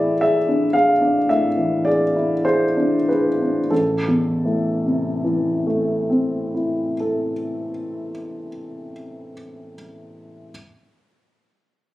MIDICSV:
0, 0, Header, 1, 2, 480
1, 0, Start_track
1, 0, Key_signature, 0, "minor"
1, 0, Tempo, 1061947
1, 582, Tempo, 1162791
1, 1062, Tempo, 1255230
1, 1542, Time_signature, 4, 2, 24, 8
1, 1542, Tempo, 1142857
1, 5001, End_track
2, 0, Start_track
2, 0, Title_t, "Upright piano"
2, 0, Program_c, 0, 0
2, 0, Control_c, 0, 64, 127
2, 0, Note_on_c, 0, 45, 42
2, 0, Note_on_c, 0, 52, 29
2, 0, Note_on_c, 0, 64, 34
2, 0, Note_on_c, 0, 68, 33
2, 0, Note_on_c, 0, 74, 56
2, 0, Note_on_c, 0, 76, 60
2, 54, Note_off_c, 0, 68, 0
2, 95, Note_off_c, 0, 76, 0
2, 95, Note_on_c, 0, 76, 62
2, 96, Note_off_c, 0, 74, 0
2, 103, Note_on_c, 0, 68, 35
2, 169, Note_off_c, 0, 64, 0
2, 219, Note_on_c, 0, 62, 33
2, 289, Note_off_c, 0, 68, 0
2, 331, Note_on_c, 0, 77, 61
2, 334, Note_off_c, 0, 76, 0
2, 335, Note_on_c, 0, 68, 36
2, 410, Note_off_c, 0, 62, 0
2, 459, Note_on_c, 0, 62, 34
2, 532, Note_off_c, 0, 68, 0
2, 566, Note_off_c, 0, 45, 0
2, 580, Note_off_c, 0, 77, 0
2, 584, Note_on_c, 0, 76, 57
2, 585, Note_on_c, 0, 45, 34
2, 652, Note_off_c, 0, 62, 0
2, 699, Note_off_c, 0, 52, 0
2, 699, Note_on_c, 0, 52, 32
2, 813, Note_on_c, 0, 74, 57
2, 818, Note_off_c, 0, 76, 0
2, 819, Note_on_c, 0, 68, 33
2, 890, Note_off_c, 0, 52, 0
2, 942, Note_on_c, 0, 64, 36
2, 1013, Note_off_c, 0, 68, 0
2, 1060, Note_off_c, 0, 74, 0
2, 1061, Note_on_c, 0, 72, 59
2, 1065, Note_on_c, 0, 68, 34
2, 1135, Note_off_c, 0, 64, 0
2, 1184, Note_on_c, 0, 62, 31
2, 1256, Note_off_c, 0, 68, 0
2, 1304, Note_off_c, 0, 72, 0
2, 1305, Note_on_c, 0, 71, 44
2, 1309, Note_on_c, 0, 68, 27
2, 1381, Note_off_c, 0, 62, 0
2, 1433, Note_on_c, 0, 62, 27
2, 1499, Note_off_c, 0, 68, 0
2, 1528, Note_off_c, 0, 45, 0
2, 1541, Note_on_c, 0, 69, 38
2, 1542, Note_off_c, 0, 71, 0
2, 1545, Note_off_c, 0, 62, 0
2, 1546, Note_on_c, 0, 33, 30
2, 1551, Control_c, 0, 64, 0
2, 1648, Control_c, 0, 64, 127
2, 1700, Note_on_c, 0, 40, 32
2, 1856, Note_on_c, 0, 45, 30
2, 2024, Note_on_c, 0, 48, 27
2, 2188, Note_on_c, 0, 52, 30
2, 2366, Note_on_c, 0, 57, 28
2, 2546, Note_on_c, 0, 60, 25
2, 2734, Note_on_c, 0, 64, 24
2, 2900, Note_off_c, 0, 69, 0
2, 2904, Note_off_c, 0, 33, 0
2, 2926, Note_on_c, 0, 69, 26
2, 3058, Note_off_c, 0, 40, 0
2, 3214, Note_off_c, 0, 45, 0
2, 3383, Note_off_c, 0, 48, 0
2, 3546, Note_off_c, 0, 52, 0
2, 3724, Note_off_c, 0, 57, 0
2, 3905, Note_off_c, 0, 60, 0
2, 4077, Note_off_c, 0, 69, 0
2, 4078, Note_off_c, 0, 64, 0
2, 4399, Control_c, 0, 64, 0
2, 5001, End_track
0, 0, End_of_file